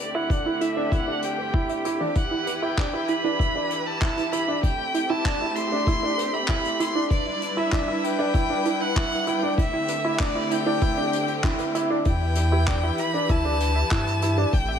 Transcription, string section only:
0.00 2.13 D3 medium
0.00 2.13 A3 medium
0.00 2.13 C4 medium
0.00 4.59 G4 medium
2.16 4.61 E3 medium
2.16 4.61 E4 medium
2.16 4.61 B4 medium
4.64 7.09 A3 medium
4.64 7.09 C4 medium
4.64 7.08 G4 medium
7.10 9.56 G3 medium
7.10 9.56 D4 medium
7.10 9.55 E4 medium
7.10 9.56 B4 medium
9.58 12.03 D3 medium
9.58 12.03 A3 medium
9.58 12.03 C4 medium
9.58 12.03 G4 medium
12.06 14.51 E3 medium
12.06 14.51 E4 medium
12.06 14.79 G4 medium
12.06 14.51 B4 medium
14.53 14.79 A3 medium
14.53 14.79 C4 medium

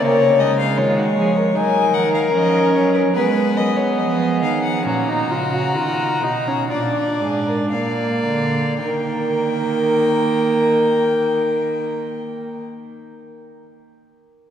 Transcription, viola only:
0.01 0.41 A#3 medium
0.39 1.54 G#3 medium
1.55 2.32 D#4 medium
2.33 3.13 C#4 medium
3.16 4.82 B3 loud
4.85 5.10 C#4 medium
5.08 5.32 D#4 medium
5.31 5.55 F4 medium
5.54 5.75 F#4 medium
5.76 6.25 F4 medium
6.24 6.49 D#4 medium
6.48 6.70 C#4 medium
6.71 7.75 D4 medium
7.73 8.81 A#3 medium
8.82 12.65 A#3 medium

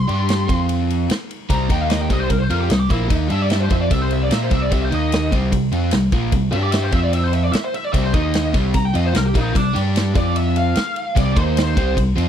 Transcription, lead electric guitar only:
0.00 0.66 C6 medium
1.50 1.69 A#5 medium
1.72 1.81 G5 medium
1.81 1.90 F5 medium
1.90 2.00 D#5 medium
2.01 2.10 G5 medium
2.11 2.20 D#5 medium
2.20 2.29 C5 medium
2.29 2.39 A#4 medium
2.40 2.50 C5 medium
2.50 2.60 A#4 medium
2.60 2.70 G4 medium
2.71 2.80 D#4 medium
2.80 2.90 G4 medium
2.91 3.10 E4 medium
3.32 3.42 E5 medium
3.42 3.51 D5 medium
3.51 3.61 E5 medium
3.60 3.70 C5 medium
3.72 3.81 E5 medium
3.81 3.92 D5 medium
3.92 4.01 E5 medium
4.02 4.11 C5 medium
4.13 4.23 E5 medium
4.23 4.32 D5 medium
4.34 4.42 E5 medium
4.43 4.52 C5 medium
4.52 4.62 E5 medium
4.62 4.72 D5 medium
4.73 4.82 E5 medium
4.85 4.93 C5 medium
4.94 5.32 D#5 medium
6.52 6.62 E5 medium
6.63 6.72 D5 medium
6.72 6.82 E5 medium
6.82 6.92 C5 medium
6.93 7.03 E5 medium
7.03 7.14 D5 medium
7.14 7.23 E5 medium
7.24 7.33 C5 loud
7.33 7.43 E5 medium
7.43 7.52 D5 medium
7.52 7.63 E5 medium
7.64 7.74 C5 medium
7.74 7.84 E5 medium
7.84 7.92 D5 medium
7.93 8.03 E5 medium
8.03 8.13 C5 medium
8.13 8.53 D#5 medium
8.74 8.85 A#5 loud
8.85 8.94 G5 medium
8.95 9.06 D#5 medium
9.06 9.15 C5 medium
9.15 9.25 A#4 medium
9.25 9.35 G4 medium
9.36 9.55 D#4 medium
9.57 9.75 D4 medium
10.16 10.35 D5 medium
10.37 10.56 E5 medium
10.58 11.15 F5 loud
11.18 11.36 D5 medium
11.38 11.57 C5 medium
11.60 11.97 C5 medium

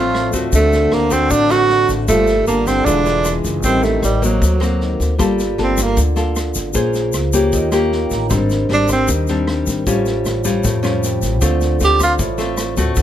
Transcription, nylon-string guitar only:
0.00 0.50 A2 soft
0.00 0.30 A3 medium
0.00 0.30 C4 medium
0.00 0.30 F4 medium
0.33 1.08 A3 medium
0.33 1.08 C4 medium
0.33 1.08 F#4 medium
0.52 1.28 D3 medium
1.10 1.47 A3 medium
1.10 1.47 C4 medium
1.10 1.47 F#4 medium
1.30 2.06 A2 soft
1.49 2.05 A3 medium
1.49 2.05 C4 medium
1.49 2.05 F#4 medium
2.08 2.84 G3 medium
2.08 2.33 A#3 medium
2.08 2.34 F4 soft
2.08 2.34 A4 medium
2.47 2.73 A#3 soft
2.47 2.74 F4 soft
2.47 2.74 A4 soft
2.86 3.62 E3 medium
2.86 3.03 G#3 soft
2.86 3.03 D4 soft
2.86 3.03 F4 medium
3.05 3.61 G#3 soft
3.05 3.61 D4 medium
3.05 3.61 F4 medium
3.64 4.40 A2 medium
3.64 4.03 G3 soft
3.64 4.03 C4 soft
3.64 4.03 D#4 medium
4.22 4.58 A#3 medium
4.22 4.58 C4 medium
4.22 4.59 F#4 medium
4.60 5.16 A#3 medium
4.60 5.16 C4 soft
4.60 5.17 F#4 medium
5.18 5.95 G3 medium
5.18 5.55 A#3 medium
5.18 5.55 F4 medium
5.18 5.56 A4 medium
5.58 6.14 A#3 medium
5.58 6.14 F4 soft
5.58 6.14 A4 medium
5.97 6.73 D3 soft
6.16 6.72 A#3 medium
6.16 6.72 F4 medium
6.16 6.72 A4 medium
6.74 7.32 A#3 medium
6.74 7.13 C#4 medium
6.74 7.13 G#4 soft
6.74 7.14 C5 medium
7.33 7.69 A#3 medium
7.33 7.69 C#4 medium
7.33 7.70 G4 medium
7.53 8.29 D#3 medium
7.72 8.27 A#3 medium
7.72 8.28 C#4 medium
7.72 8.28 G4 medium
8.30 9.06 G#2 soft
8.30 8.66 G3 medium
8.30 8.66 C4 soft
8.30 8.67 D4 medium
8.70 9.25 G3 medium
8.70 9.25 C4 medium
8.70 9.25 D4 medium
9.08 9.84 D#3 medium
9.29 9.84 G3 medium
9.29 9.84 C4 medium
9.29 9.84 D4 medium
9.87 10.62 A2 medium
9.87 10.42 G3 medium
9.87 10.42 C#4 medium
9.87 10.42 F4 medium
10.45 10.80 G3 medium
10.45 10.80 C#4 medium
10.45 10.81 F4 medium
10.64 11.40 A2 medium
10.83 11.38 G3 medium
10.83 11.38 C#4 medium
10.83 11.39 F4 medium
11.41 12.17 D3 medium
11.41 11.77 A3 soft
11.41 11.77 C4 soft
11.41 11.77 F4 medium
11.80 12.19 A3 soft
11.80 12.19 C4 soft
11.80 12.20 F4 medium
12.19 12.95 A2 medium
12.38 12.74 A3 medium
12.38 12.74 C4 medium
12.38 12.75 F4 medium
12.77 13.02 A3 medium
12.77 13.02 C4 medium
12.77 13.02 F#4 medium
12.96 13.02 D3 medium

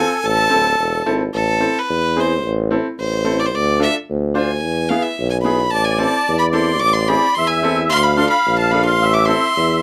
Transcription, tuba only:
0.24 0.52 A1 loud
0.52 0.77 D1 loud
0.79 1.04 E1 medium
1.07 1.31 G#1 medium
1.34 1.67 A1 loud
1.90 2.45 E2 loud
2.44 2.77 A1 loud
2.99 3.56 A1 loud
3.54 3.87 D2 loud
4.09 4.66 D2 loud
4.64 4.97 E2 loud
5.19 5.75 B1 loud
5.73 6.06 A1 loud
6.28 6.84 E2 loud
6.82 7.15 A1 loud
7.37 7.94 E2 loud
7.93 8.25 D2 loud
8.47 9.02 A#1 loud
9.01 9.34 A1 loud
9.57 9.82 E2 loud

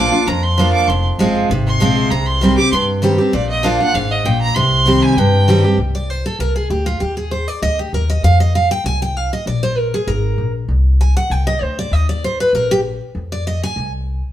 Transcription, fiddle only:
0.00 0.28 D6 loud
0.27 0.44 A#5 loud
0.42 0.72 C6 loud
0.73 0.89 D6 loud
0.87 1.04 C6 medium
1.66 2.12 C6 loud
2.10 2.28 A#5 loud
2.26 2.57 C6 loud
2.57 2.71 D6 loud
2.72 2.82 C6 medium
3.34 3.49 D5 loud
3.49 3.66 D#5 loud
3.64 3.80 F5 medium
3.81 3.96 F#5 loud
3.95 4.12 F5 loud
4.11 4.27 D#5 loud
4.25 4.41 G5 loud
4.41 4.56 A#5 loud
4.55 5.03 C6 loud
5.02 5.18 G#5 loud
5.17 5.71 G5 loud

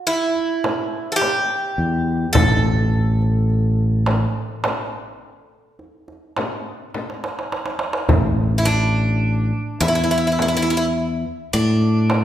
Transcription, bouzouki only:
0.07 1.12 E4 medium
1.12 1.16 A4 medium
1.16 2.32 G4 medium
2.33 6.89 A4 medium
8.58 8.66 E4 medium
8.65 9.85 D4 medium
9.80 9.87 E4 medium
9.88 9.94 E4 medium
9.95 10.02 E4 medium
10.04 10.10 E4 soft
10.11 10.16 E4 medium
10.18 10.25 E4 medium
10.27 10.31 E4 medium
10.32 10.40 E4 soft
10.42 10.47 E4 medium
10.48 10.55 E4 medium
10.57 10.61 E4 medium
10.62 10.69 E4 medium
10.70 10.76 E4 medium
10.77 10.85 E4 medium
11.53 12.24 D4 medium

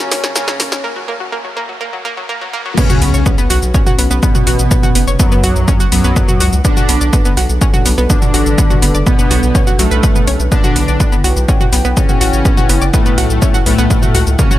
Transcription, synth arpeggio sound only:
0.11 0.19 A#3 medium
0.24 0.29 C#4 medium
0.36 0.39 A#3 loud
0.48 0.51 F#3 medium
0.60 0.68 A#3 medium
0.72 0.77 C#4 medium
0.84 0.87 A#3 loud
0.96 0.99 F#3 medium
1.08 1.11 A#3 loud
1.20 1.23 F#3 medium
1.32 1.36 A#3 loud
1.45 1.48 F#3 medium
1.57 1.60 A#3 loud
1.69 1.72 F#3 medium
1.81 1.84 A#3 loud
1.93 1.96 F#3 medium
2.05 2.08 A#3 loud
2.17 2.20 F#3 medium
2.29 2.32 A#3 loud
2.41 2.44 F#3 medium
2.53 2.57 A#3 loud
2.66 2.69 F#3 medium
2.78 2.83 B3 medium
2.90 2.95 F#4 loud
3.02 3.10 B3 medium
3.14 3.19 C#5 medium
3.26 3.31 B3 medium
3.38 3.43 B3 loud
3.50 3.55 F#4 loud
3.74 3.80 C#4 loud
3.87 3.92 F#4 loud
3.99 4.06 B3 medium
4.11 4.14 B3 loud
4.23 4.26 B3 medium
4.35 4.43 F#4 medium
4.47 4.52 F#4 loud
4.71 4.76 B3 medium
4.83 4.88 F#4 loud
4.95 5.03 B3 medium
5.08 5.13 C#5 medium
5.20 5.25 B3 medium
5.32 5.37 B3 loud
5.44 5.49 F#4 loud
5.68 5.73 C#4 loud
5.80 5.85 F#4 loud
5.92 6.00 B3 medium
6.04 6.07 B3 loud
6.16 6.19 B3 medium
6.29 6.36 F#4 medium
6.41 6.46 F#4 loud
6.65 6.70 B3 medium
6.77 6.82 F#4 loud
6.89 6.97 B3 medium
7.01 7.06 D5 medium
7.13 7.18 B3 medium
7.25 7.30 B3 loud
7.37 7.42 F#4 loud
7.61 7.67 C#4 loud
7.74 7.79 F#4 loud
7.86 7.94 B3 medium
7.98 8.01 B3 loud
8.10 8.13 B3 medium
8.22 8.30 F#4 medium
8.34 8.39 F#4 loud
8.58 8.63 B3 medium
8.70 8.76 F#4 loud
8.82 8.90 B3 medium
8.95 9.00 D5 medium
9.07 9.12 B3 medium
9.19 9.24 B3 loud
9.31 9.36 F#4 loud
9.55 9.60 C#4 loud
9.67 9.72 F#4 loud
9.79 9.87 F#3 loud
9.91 9.94 B4 loud
10.03 10.09 B4 medium
10.16 10.21 B3 medium
10.28 10.35 C#4 loud
10.52 10.57 B3 medium
10.64 10.69 F#4 loud
10.76 10.84 B3 medium
10.88 10.93 D5 medium
11.00 11.05 B3 medium
11.12 11.18 B3 loud
11.24 11.30 F#4 loud
11.48 11.54 C#4 loud
11.61 11.66 F#4 loud
11.73 11.81 B3 medium
11.85 11.88 B3 loud
11.97 12.00 B3 medium
12.09 12.17 F#4 medium
12.21 12.26 F#4 loud
12.45 12.50 B3 medium
12.57 12.63 F#4 loud
12.69 12.77 B3 medium
12.82 12.87 D5 medium
12.94 12.99 B3 medium
13.06 13.11 B3 loud
13.18 13.23 F#4 loud
13.42 13.47 C#4 loud
13.54 13.59 F#4 loud
13.66 13.74 B3 medium
13.78 13.82 B3 loud
13.90 13.94 B3 medium
14.03 14.10 F#4 medium
14.15 14.20 F#4 loud
14.39 14.44 A#3 medium
14.51 14.56 F#4 loud

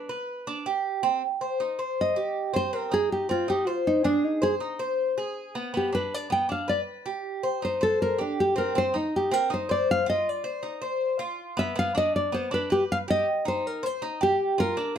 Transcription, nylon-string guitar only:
0.00 0.86 B4 medium
2.01 2.52 D#5 medium
2.56 2.75 C5 medium
2.75 2.93 A#4 medium
2.94 3.11 G#4 medium
3.12 3.30 G4 medium
3.31 3.49 F4 medium
3.50 3.67 G4 medium
3.67 3.86 F4 medium
3.87 4.04 D#4 medium
4.05 4.25 D4 medium
4.25 4.43 D#4 medium
4.43 4.54 G#4 loud
5.77 5.94 G4 medium
5.95 6.14 B4 medium
6.14 6.31 D5 medium
6.32 6.50 G5 loud
6.52 6.69 F5 medium
6.69 6.80 D5 medium
7.65 7.82 C5 medium
7.83 8.00 A4 medium
8.02 8.19 A#4 medium
8.21 8.38 D4 medium
8.40 8.57 G4 medium
8.58 8.76 A#4 medium
8.78 8.95 C5 loud
8.96 9.13 D#4 medium
9.16 9.34 G4 medium
9.34 9.51 A#4 loud
9.54 9.71 C5 medium
9.71 9.89 D5 medium
9.91 10.08 F5 loud
10.10 10.29 D#5 loud
10.29 11.40 D5 medium
11.59 11.77 E5 loud
11.79 11.96 F5 loud
11.97 12.15 D#5 loud
12.16 12.33 D5 medium
12.34 12.52 C5 medium
12.54 12.71 B4 medium
12.72 12.83 G4 medium
12.92 12.97 F5 loud
13.10 13.48 D#5 loud
13.48 13.67 C5 medium
13.67 13.86 A#4 medium
13.86 14.23 C5 loud
14.23 14.61 G4 medium
14.60 14.96 A#4 loud

